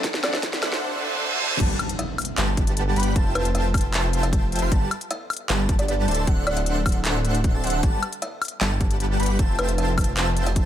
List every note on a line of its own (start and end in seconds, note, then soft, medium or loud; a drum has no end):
0.00 0.80 D3 medium
0.00 0.78 A3 medium
0.00 0.81 C4 medium
0.00 0.81 E4 medium
0.00 0.80 F#5 medium
0.00 riser medium
0.04 0.22 D1 loud
0.04 0.21 D4 loud
0.04 0.21 A4 medium
0.04 kick loud
0.04 snare medium
0.04 closed hi-hat medium
0.14 snare medium
0.23 0.82 D1 loud
0.23 0.35 F#3 medium
0.23 0.35 C4 medium
0.23 0.35 D4 medium
0.23 1.48 D4 loud
0.23 0.35 E4 medium
0.23 1.48 A4 medium
0.23 0.36 A4 loud
0.23 1.48 C5 medium
0.23 0.32 D5 medium
0.23 1.48 E5 medium
0.23 1.48 F#5 loud
0.23 snare medium
0.23 closed hi-hat medium
0.23 high woodblock medium
0.33 0.63 E5 loud
0.33 snare medium
0.43 kick loud
0.43 snare loud
0.43 closed hi-hat medium
0.52 0.71 F#3 medium
0.52 0.71 C4 medium
0.52 0.71 D4 medium
0.52 0.71 E4 medium
0.52 0.72 B4 medium
0.52 snare medium
0.52 closed hi-hat medium
0.63 snare loud
0.63 closed hi-hat medium
0.63 high woodblock medium
0.72 snare medium
0.82 reverse cymbal medium
1.50 1.59 D4 loud
1.50 1.59 A4 medium
1.50 1.59 C5 medium
1.50 1.59 E5 medium
1.50 1.59 A5 loud
1.60 1.74 G1 loud
1.60 1.76 G3 medium
1.60 1.76 G4 medium
1.60 1.76 F#5 medium
1.60 1.76 A5 loud
1.60 kick loud
1.60 closed hi-hat medium
1.60 crash loud
1.60 impact medium
1.79 closed hi-hat medium
1.79 high woodblock medium
1.89 closed hi-hat medium
1.99 2.36 E5 medium
1.99 closed hi-hat medium
2.18 closed hi-hat medium
2.18 open hi-hat medium
2.18 high woodblock medium
2.25 closed hi-hat medium
2.38 2.55 G1 loud
2.38 2.48 G3 medium
2.38 2.48 G4 medium
2.38 2.48 B4 medium
2.38 2.50 E5 medium
2.38 2.48 F#5 medium
2.38 2.48 A5 loud
2.38 clap loud
2.38 closed hi-hat medium
2.57 2.94 G1 loud
2.57 2.94 G3 medium
2.57 2.94 G4 medium
2.57 2.94 B4 medium
2.57 2.94 F#5 medium
2.57 2.94 A5 medium
2.57 kick loud
2.57 closed hi-hat medium
2.67 closed hi-hat medium
2.77 closed hi-hat medium
2.96 3.14 G1 loud
2.96 3.13 G3 medium
2.96 3.14 G4 medium
2.96 3.14 B4 medium
2.96 3.14 F#5 medium
2.96 3.14 B5 loud
2.96 closed hi-hat medium
3.00 closed hi-hat medium
3.03 closed hi-hat medium
3.16 3.33 F1 loud
3.16 3.33 F4 loud
3.16 3.33 C5 medium
3.16 3.33 E5 medium
3.16 3.33 A5 loud
3.16 kick loud
3.16 closed hi-hat medium
3.35 4.60 F1 medium
3.35 4.60 F4 medium
3.35 3.48 B4 medium
3.35 4.60 C5 medium
3.35 4.60 E5 medium
3.35 4.60 G5 medium
3.35 4.60 A5 loud
3.35 closed hi-hat medium
3.35 high woodblock medium
3.45 closed hi-hat medium
3.55 3.67 E5 loud
3.55 closed hi-hat medium
3.74 kick loud
3.74 closed hi-hat medium
3.74 open hi-hat medium
3.74 high woodblock medium
3.81 closed hi-hat medium
3.94 clap loud
3.94 closed hi-hat medium
4.13 closed hi-hat medium
4.23 4.62 E5 medium
4.23 closed hi-hat medium
4.33 kick loud
4.33 closed hi-hat medium
4.52 closed hi-hat medium
4.56 closed hi-hat medium
4.59 4.70 F1 loud
4.59 4.70 F4 loud
4.59 4.70 C5 medium
4.59 4.70 E5 medium
4.59 4.70 G5 medium
4.59 4.70 C6 loud
4.59 closed hi-hat medium
4.72 4.86 G1 loud
4.72 4.88 G3 medium
4.72 4.88 G4 medium
4.72 4.88 F#5 medium
4.72 4.88 A5 loud
4.72 kick loud
4.72 closed hi-hat medium
4.91 closed hi-hat medium
4.91 high woodblock medium
5.01 closed hi-hat medium
5.11 5.48 E5 loud
5.11 closed hi-hat medium
5.30 closed hi-hat medium
5.30 open hi-hat medium
5.30 high woodblock medium
5.37 closed hi-hat medium
5.49 5.67 G1 loud
5.49 5.60 G3 medium
5.49 5.60 G4 medium
5.49 5.60 B4 medium
5.49 5.62 E5 medium
5.49 5.60 F#5 medium
5.49 5.60 A5 loud
5.49 clap loud
5.49 closed hi-hat medium
5.69 6.06 G1 loud
5.69 6.06 G3 medium
5.69 6.06 G4 medium
5.69 6.06 B4 medium
5.69 6.06 F#5 medium
5.69 6.06 A5 medium
5.69 kick loud
5.69 closed hi-hat medium
5.79 5.85 D5 medium
5.79 closed hi-hat medium
5.88 5.95 D5 medium
5.88 closed hi-hat medium
6.08 6.26 D1 loud
6.08 6.25 D4 medium
6.08 6.25 A4 medium
6.08 6.25 C5 medium
6.08 6.25 E5 medium
6.08 6.25 A5 loud
6.08 6.25 A5 medium
6.08 closed hi-hat soft
6.11 closed hi-hat medium
6.14 closed hi-hat medium
6.27 6.45 D1 loud
6.27 6.45 A4 medium
6.27 6.45 C5 medium
6.27 6.45 E5 medium
6.27 6.45 F#5 loud
6.27 kick loud
6.27 closed hi-hat medium
6.47 7.52 D1 loud
6.47 7.52 D4 loud
6.47 7.52 A4 medium
6.47 7.52 C5 medium
6.47 6.55 D5 loud
6.47 7.52 E5 medium
6.47 7.52 F#5 loud
6.47 closed hi-hat medium
6.47 high woodblock medium
6.57 6.86 E5 medium
6.57 closed hi-hat medium
6.66 closed hi-hat medium
6.86 kick loud
6.86 closed hi-hat medium
6.86 open hi-hat medium
6.86 high woodblock medium
6.92 closed hi-hat medium
7.05 clap loud
7.05 closed hi-hat medium
7.25 closed hi-hat medium
7.35 closed hi-hat medium
7.44 kick loud
7.44 closed hi-hat medium
7.54 7.62 D1 loud
7.54 7.62 D4 medium
7.54 7.62 A4 medium
7.54 7.62 C5 medium
7.54 7.62 E5 medium
7.54 7.62 A5 medium
7.64 7.81 D1 loud
7.64 7.81 D4 medium
7.64 7.81 A4 medium
7.64 7.81 C5 medium
7.64 7.81 E5 medium
7.64 7.81 F#5 loud
7.64 closed hi-hat soft
7.67 closed hi-hat medium
7.70 closed hi-hat medium
7.83 7.98 G1 loud
7.83 7.99 G3 medium
7.83 7.99 G4 medium
7.83 7.99 F#5 medium
7.83 7.99 A5 loud
7.83 kick loud
7.83 closed hi-hat medium
8.03 closed hi-hat medium
8.03 high woodblock medium
8.13 closed hi-hat medium
8.22 8.59 E5 medium
8.22 closed hi-hat medium
8.42 closed hi-hat medium
8.42 open hi-hat medium
8.42 high woodblock medium
8.48 closed hi-hat medium
8.61 8.79 G1 loud
8.61 8.71 G3 medium
8.61 8.71 G4 medium
8.61 8.71 B4 medium
8.61 8.74 E5 loud
8.61 8.71 F#5 medium
8.61 8.71 A5 loud
8.61 clap loud
8.61 closed hi-hat medium
8.81 9.18 G1 loud
8.81 9.17 G3 medium
8.81 9.17 G4 medium
8.81 9.17 B4 medium
8.81 9.17 F#5 medium
8.81 9.17 A5 medium
8.81 kick loud
8.81 closed hi-hat medium
8.91 closed hi-hat medium
9.00 closed hi-hat medium
9.20 9.37 G1 loud
9.20 9.37 G3 medium
9.20 9.37 G4 medium
9.20 9.37 B4 medium
9.20 9.37 F#5 medium
9.20 9.37 B5 medium
9.20 9.37 B5 loud
9.20 closed hi-hat soft
9.23 closed hi-hat medium
9.26 closed hi-hat medium
9.39 9.57 F1 loud
9.39 9.56 F4 medium
9.39 9.56 C5 medium
9.39 9.56 E5 medium
9.39 9.56 G5 medium
9.39 9.56 A5 loud
9.39 kick loud
9.39 closed hi-hat medium
9.59 10.65 F1 medium
9.59 10.65 F4 medium
9.59 9.71 B4 medium
9.59 10.65 C5 medium
9.59 10.65 E5 medium
9.59 10.65 G5 medium
9.59 10.65 A5 loud
9.59 closed hi-hat medium
9.59 high woodblock medium
9.69 closed hi-hat medium
9.78 9.91 E5 medium
9.78 closed hi-hat medium
9.98 kick loud
9.98 closed hi-hat medium
9.98 open hi-hat loud
9.98 high woodblock medium
10.04 closed hi-hat medium
10.17 clap loud
10.17 closed hi-hat medium
10.37 closed hi-hat medium
10.46 10.65 E5 medium
10.46 closed hi-hat medium
10.56 kick loud
10.56 closed hi-hat medium